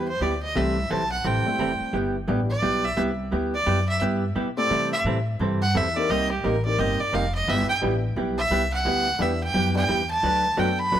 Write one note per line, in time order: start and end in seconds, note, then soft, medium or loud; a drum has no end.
0.00 0.20 E2 medium
0.08 0.24 C5 medium
0.20 0.54 D2 medium
0.20 0.32 G3 medium
0.20 0.32 B3 medium
0.20 0.32 E4 medium
0.20 0.33 G4 medium
0.20 0.42 D5 medium
0.43 0.58 D#5 medium
0.55 0.89 C2 medium
0.55 0.77 C3 medium
0.55 0.77 E3 medium
0.55 0.75 G3 medium
0.55 0.77 G3 soft
0.55 0.75 A3 medium
0.55 0.75 C4 medium
0.55 0.77 C4 medium
0.55 0.75 E4 medium
0.55 0.77 E4 medium
0.55 0.75 G4 medium
0.55 0.77 A4 medium
0.55 0.93 E5 medium
0.90 1.23 B1 medium
0.90 1.01 C3 medium
0.90 1.02 E3 medium
0.90 1.02 G3 medium
0.90 1.02 C4 medium
0.90 1.02 E4 medium
0.90 1.02 A4 medium
0.90 1.11 A5 medium
1.12 1.28 F#5 medium
1.24 1.45 A1 medium
1.24 1.46 C3 medium
1.24 1.46 E3 medium
1.24 1.46 G3 medium
1.24 1.46 C4 medium
1.24 1.46 E4 medium
1.24 1.46 A4 medium
1.24 1.95 G5 medium
1.45 1.91 G3 medium
1.45 1.91 A3 medium
1.45 1.92 C4 medium
1.45 1.92 E4 medium
1.45 1.92 G4 medium
1.45 muted upright bass stroke soft
1.59 1.79 F#1 medium
1.59 1.70 C3 medium
1.59 1.70 E3 medium
1.59 1.70 G3 medium
1.59 1.71 C4 medium
1.59 1.71 E4 medium
1.59 1.71 A4 medium
1.80 muted upright bass stroke soft
1.93 2.27 G1 medium
1.93 2.15 G3 medium
1.93 2.15 B3 medium
1.93 2.15 E4 medium
1.93 2.15 G4 medium
2.28 2.62 A1 medium
2.28 2.39 G3 medium
2.28 2.48 G3 medium
2.28 2.48 B3 medium
2.28 2.40 B3 medium
2.28 2.48 D4 medium
2.28 2.40 E4 medium
2.28 2.48 E4 medium
2.28 2.40 G4 medium
2.28 2.48 G4 medium
2.50 2.86 D5 loud
2.62 2.96 B1 medium
2.62 2.84 G3 medium
2.62 2.84 B3 medium
2.62 2.84 E4 medium
2.62 2.84 G4 medium
2.85 2.98 E5 loud
2.97 3.31 C2 loud
2.97 3.08 G3 medium
2.97 3.09 B3 medium
2.97 3.09 E4 medium
2.97 3.09 G4 medium
3.31 3.66 D2 medium
3.31 3.53 G3 medium
3.31 3.53 B3 medium
3.31 3.54 E4 medium
3.31 3.54 G4 medium
3.54 3.86 D5 medium
3.66 4.00 F#2 medium
3.66 3.78 G3 medium
3.66 3.78 B3 medium
3.66 3.78 E4 medium
3.66 3.78 G4 medium
3.89 4.01 E5 loud
4.01 4.35 G2 medium
4.01 4.22 G3 medium
4.01 4.23 B3 medium
4.01 4.23 E4 medium
4.01 4.23 G4 medium
4.35 4.69 B2 medium
4.35 4.47 G3 medium
4.35 4.47 B3 medium
4.35 4.47 E4 medium
4.35 4.47 G4 medium
4.57 5.03 A3 medium
4.57 5.03 C4 medium
4.57 5.03 E4 medium
4.57 5.03 G4 medium
4.57 5.03 A4 medium
4.57 4.90 D5 medium
4.70 5.03 C3 medium
4.70 4.92 C3 medium
4.70 4.91 E3 medium
4.70 4.92 G3 medium
4.70 4.92 C4 medium
4.70 4.92 E4 medium
4.70 4.92 A4 medium
4.93 5.01 E5 loud
5.04 5.38 A2 medium
5.04 5.17 C3 medium
5.04 5.17 E3 medium
5.04 5.17 G3 medium
5.04 5.17 C4 medium
5.04 5.17 E4 medium
5.04 5.17 A4 medium
5.39 5.73 G2 medium
5.39 5.61 C3 medium
5.39 5.61 E3 medium
5.39 5.61 G3 medium
5.39 5.61 C4 medium
5.39 5.62 E4 medium
5.39 5.62 A4 medium
5.62 5.78 F#5 loud
5.74 6.08 E2 medium
5.74 5.86 C3 medium
5.74 5.86 E3 medium
5.74 5.86 G3 medium
5.74 5.86 C4 medium
5.74 5.86 E4 medium
5.74 5.86 A4 medium
5.74 5.98 E5 medium
5.96 6.08 A#3 medium
5.96 6.08 C4 medium
5.96 6.08 D#4 medium
5.96 6.08 G4 medium
5.96 6.08 A#4 medium
5.96 6.12 D5 medium
6.09 6.43 C2 medium
6.09 6.30 C3 medium
6.09 6.31 G3 medium
6.09 6.31 A#3 medium
6.09 6.31 D#4 medium
6.09 6.31 G4 medium
6.09 6.31 D#5 loud
6.31 6.47 G4 medium
6.44 6.77 A1 medium
6.44 6.55 C3 medium
6.44 6.55 G3 medium
6.44 6.55 A#3 medium
6.44 6.55 D#4 medium
6.44 6.55 G4 medium
6.44 6.65 A#4 medium
6.65 7.10 A#3 medium
6.65 7.10 C4 medium
6.65 7.11 D#4 medium
6.65 7.11 G4 medium
6.65 7.11 A#4 medium
6.65 6.81 D5 medium
6.78 6.98 G1 medium
6.78 6.99 C3 soft
6.78 6.99 G3 medium
6.78 7.00 A#3 medium
6.78 7.00 D#4 medium
6.78 7.00 G4 medium
6.78 7.02 D#5 medium
7.00 7.16 D5 loud
7.13 7.46 F1 medium
7.13 7.24 C3 medium
7.13 7.24 G3 medium
7.13 7.24 A#3 medium
7.13 7.25 D#4 medium
7.13 7.24 G4 medium
7.13 7.34 F5 medium
7.35 7.51 D#5 medium
7.47 7.67 G1 medium
7.47 7.69 G3 medium
7.47 7.69 B3 medium
7.47 7.69 E4 medium
7.47 7.69 G4 medium
7.47 7.69 E5 loud
7.69 7.77 G5 loud
7.69 muted upright bass stroke soft
7.81 8.15 A1 medium
7.81 7.93 G3 medium
7.81 8.01 B3 medium
7.81 7.93 B3 medium
7.81 8.01 D4 medium
7.81 8.01 E4 medium
7.81 7.94 E4 medium
7.81 8.01 G4 medium
7.81 7.94 G4 medium
7.81 8.01 B4 medium
8.16 8.50 B1 medium
8.16 8.37 G3 medium
8.16 8.38 B3 medium
8.16 8.38 E4 medium
8.16 8.38 G4 medium
8.38 8.70 E5 loud
8.50 8.84 C2 medium
8.50 8.62 G3 medium
8.50 8.62 B3 medium
8.50 8.62 E4 medium
8.50 8.62 G4 medium
8.73 9.23 F#5 loud
8.85 9.19 D2 medium
8.85 9.06 G3 soft
8.85 9.07 B3 medium
8.85 9.07 E4 medium
8.85 9.07 G4 medium
9.19 9.53 E2 medium
9.19 9.31 G3 medium
9.19 9.39 B3 medium
9.19 9.31 B3 medium
9.19 9.39 D4 medium
9.19 9.39 E4 medium
9.19 9.31 E4 medium
9.19 9.39 G4 medium
9.19 9.31 G4 medium
9.19 9.39 B4 medium
9.19 9.42 E5 medium
9.44 9.75 G5 loud
9.54 9.88 F#2 medium
9.54 9.75 G3 medium
9.54 9.75 B3 medium
9.54 9.76 E4 medium
9.54 9.76 G4 medium
9.75 9.87 B3 medium
9.75 9.87 D4 medium
9.75 9.87 E4 medium
9.75 9.87 G4 medium
9.75 9.87 D5 medium
9.75 10.08 G5 loud
9.88 10.22 E2 medium
9.88 10.00 G3 medium
9.88 10.00 B3 medium
9.88 10.00 E4 medium
9.88 10.00 G4 medium
10.11 10.61 A5 loud
10.23 10.57 D2 medium
10.23 10.44 D3 medium
10.23 10.44 F#3 medium
10.23 10.44 A3 medium
10.23 10.44 D4 medium
10.23 10.44 F#4 medium
10.23 10.45 B4 medium
10.57 10.91 F#2 medium
10.57 10.68 D3 medium
10.57 10.69 F#3 medium
10.57 10.69 A3 medium
10.57 10.76 B3 medium
10.57 10.77 D4 medium
10.57 10.69 D4 medium
10.57 10.77 F#4 medium
10.57 10.69 F#4 medium
10.57 10.77 A4 medium
10.57 10.69 B4 medium
10.57 10.77 B4 medium
10.57 10.81 G5 medium
10.79 11.00 B5 loud
10.92 11.00 B1 medium
10.92 11.00 D3 soft
10.92 11.00 F#3 medium
10.92 11.00 A3 medium
10.92 11.00 D4 medium
10.92 11.00 F#4 medium
10.92 11.00 B4 medium